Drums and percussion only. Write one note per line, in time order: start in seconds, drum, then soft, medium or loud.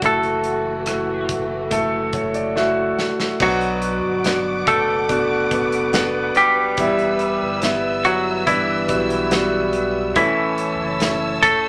0.02 kick medium
0.02 closed hi-hat medium
0.23 closed hi-hat soft
0.44 closed hi-hat medium
0.86 cross-stick medium
0.86 closed hi-hat medium
1.29 kick medium
1.29 closed hi-hat medium
1.71 kick medium
1.71 closed hi-hat medium
2.13 kick medium
2.13 closed hi-hat medium
2.34 closed hi-hat soft
2.57 snare medium
2.99 snare medium
3.20 snare medium
3.40 kick medium
3.40 crash medium
3.61 closed hi-hat soft
3.82 closed hi-hat medium
4.24 snare loud
4.24 closed hi-hat medium
4.67 kick medium
4.67 closed hi-hat medium
5.09 kick medium
5.09 closed hi-hat medium
5.51 kick medium
5.51 closed hi-hat medium
5.72 closed hi-hat medium
5.93 snare loud
5.93 closed hi-hat medium
6.35 closed hi-hat medium
6.77 kick loud
6.77 closed hi-hat medium
6.99 closed hi-hat soft
7.19 closed hi-hat medium
7.62 snare loud
7.62 closed hi-hat medium
8.04 closed hi-hat medium
8.47 kick medium
8.47 closed hi-hat medium
8.88 kick medium
8.88 closed hi-hat medium
9.10 closed hi-hat medium
9.31 snare loud
9.31 closed hi-hat medium
9.73 closed hi-hat medium
10.15 kick medium
10.15 closed hi-hat medium
10.58 closed hi-hat medium
11.00 snare loud
11.00 closed hi-hat medium
11.43 kick medium
11.43 closed hi-hat medium